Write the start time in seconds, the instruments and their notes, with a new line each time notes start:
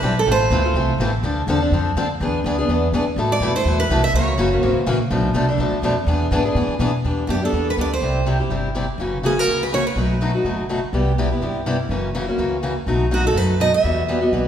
Already playing: steel-string acoustic guitar B4
0.02 upright bass B1, steel-string acoustic guitar E3 G3 C4 E4 A4
0.19 steel-string acoustic guitar A4
0.27 upright bass A1, steel-string acoustic guitar E3 A3 C4 F4 A4
0.32 steel-string acoustic guitar C5
0.50 upright bass D2, steel-string acoustic guitar E3 A3 C4 F4 A4
0.64 steel-string acoustic guitar C4 F4 A4
0.74 upright bass C2, steel-string acoustic guitar E3 A3 C4 F4 A4
0.98 upright bass A1, steel-string acoustic guitar E3 A3 C4 F4 A4
1.23 upright bass D2, steel-string acoustic guitar D3 F3 C4 D4 A4
1.47 upright bass E2, steel-string acoustic guitar D3 F3 C4 D4 A4
1.60 steel-string acoustic guitar C4 D4 A4
1.71 upright bass F2, steel-string acoustic guitar D3 F3 C4 D4 A4
1.95 upright bass D2, steel-string acoustic guitar D3 F3 C4 D4 A4
2.20 upright bass E2, steel-string acoustic guitar E3 B3 D4 G#4
2.44 upright bass D2, steel-string acoustic guitar E3 B3 D4 G#4
2.58 steel-string acoustic guitar B3 D4 G#4
2.69 upright bass E2, steel-string acoustic guitar E3 B3 D4 G#4
2.92 upright bass G#2, steel-string acoustic guitar E3 B3 D4 G#4
3.06 muted upright bass stroke
3.16 upright bass A2, steel-string acoustic guitar B2 E3 A3 E4 A4
3.32 steel-string acoustic guitar D5
3.40 upright bass F2, steel-string acoustic guitar B2 E3 A3 E4 A4
3.55 steel-string acoustic guitar A3 E4 A4 C5
3.65 upright bass E2, steel-string acoustic guitar B2 E3 A3 E4 A4
3.80 steel-string acoustic guitar B4
3.89 upright bass C2, steel-string acoustic guitar B2 E3 A3 E4 A4
4.04 steel-string acoustic guitar E5
4.14 upright bass C#2, steel-string acoustic guitar C#3 E3 A#3 C#4 F#4 C#5
4.38 upright bass F#1, steel-string acoustic guitar C#3 E3 A#3 C#4 F#4
4.51 steel-string acoustic guitar A#3 C#4 F#4
4.62 upright bass G#1, steel-string acoustic guitar C#3 E3 A#3 C#4 F#4 C5
4.76 muted upright bass stroke
4.86 upright bass A#1, steel-string acoustic guitar C#3 E3 A#3 C#4 F#4
5.11 upright bass B1, steel-string acoustic guitar B2 F3 A3 D4 A4
5.34 upright bass C2, steel-string acoustic guitar B2 F3 A3 D4 A4
5.49 steel-string acoustic guitar A3 D4 A4
5.58 upright bass D2, steel-string acoustic guitar B2 F3 A3 D4 A4
5.72 muted upright bass stroke
5.82 upright bass F2, steel-string acoustic guitar B2 F3 A3 D4 A4
6.07 upright bass E2, steel-string acoustic guitar E3 B3 D4 G#4
6.31 upright bass G#2, steel-string acoustic guitar E3 B3 D4 G#4
6.45 steel-string acoustic guitar B3 D4 G#4
6.55 upright bass A2, steel-string acoustic guitar E3 B3 D4 G#4
6.68 muted upright bass stroke
6.79 upright bass B2, steel-string acoustic guitar E3 B3 D4 G#4
7.04 upright bass E2, steel-string acoustic guitar E3 B3 D4 G4
7.27 upright bass F#2, steel-string acoustic guitar E3 B3 D4 F#4 G4
7.42 steel-string acoustic guitar B3 D4 G4 A4
7.52 upright bass E2, steel-string acoustic guitar E3 B3 D4 G4
7.70 steel-string acoustic guitar B4
7.77 upright bass D2, steel-string acoustic guitar E3 B3 D4 G4 D5
7.94 steel-string acoustic guitar C5
8.02 upright bass C2, steel-string acoustic guitar C3 G3 C4 E4 G4
8.26 steel-string acoustic guitar C3 G3 C4 E4 G4
8.40 steel-string acoustic guitar C4 E4 G4
8.49 upright bass G1, steel-string acoustic guitar C3 G3 C4 E4 G4
8.75 steel-string acoustic guitar C3 G3 C4 E4 G4
8.98 upright bass F#1, steel-string acoustic guitar C#3 E3 A#3 C#4 F#4
9.23 steel-string acoustic guitar C#3 E3 A#3 C#4 F#4 G#4
9.37 steel-string acoustic guitar A#3 C#4 F#4 A#4
9.47 upright bass C#2, steel-string acoustic guitar C#3 E3 A#3 C#4 F#4
9.63 steel-string acoustic guitar B4
9.72 steel-string acoustic guitar C#3 E3 A#3 C#4 F#4 C#5
9.87 steel-string acoustic guitar B4
9.96 upright bass B1, steel-string acoustic guitar B2 F#3 A3 D#4 F#4
10.21 steel-string acoustic guitar B2 F#3 A3 D#4 F#4
10.34 steel-string acoustic guitar A3 D#4 F#4
10.44 upright bass F#1, steel-string acoustic guitar B2 F#3 A3 D#4 F#4
10.69 steel-string acoustic guitar B2 F#3 A3 D#4 F#4
10.93 upright bass C2, steel-string acoustic guitar C3 G3 B3 E4 G4
11.18 steel-string acoustic guitar C3 G3 B3 E4 G4
11.31 steel-string acoustic guitar B3 E4 G4
11.42 upright bass G2, steel-string acoustic guitar C3 G3 B3 E4 G4
11.66 steel-string acoustic guitar C3 G3 B3 E4 G4
11.89 upright bass F#1, steel-string acoustic guitar C#3 E3 A#3 C#4 F#4
12.15 steel-string acoustic guitar C#3 E3 A#3 C#4 F#4
12.27 steel-string acoustic guitar A#3 C#4 F#4
12.38 upright bass C#2, steel-string acoustic guitar C#3 E3 A#3 C#4 F#4
12.63 steel-string acoustic guitar C#3 E3 A#3 C#4 F#4
12.86 upright bass B1, steel-string acoustic guitar B2 F#3 A3 D#4 F#4
13.11 steel-string acoustic guitar B2 F#3 A3 D#4 F#4
13.24 steel-string acoustic guitar A3 D#4 F#4 A4
13.34 upright bass F#2, steel-string acoustic guitar B2 F#3 A3 D#4 F#4 B4
13.60 steel-string acoustic guitar B2 F#3 A3 D#4 F#4 D#5
13.74 steel-string acoustic guitar E5
13.84 upright bass E2, steel-string acoustic guitar E3 G3 B3 F#4
14.08 steel-string acoustic guitar E3 G3 B3 F#4
14.21 steel-string acoustic guitar G3 B3 F#4
14.28 upright bass B1, steel-string acoustic guitar D#5
14.33 steel-string acoustic guitar E3 G3 B3 F#4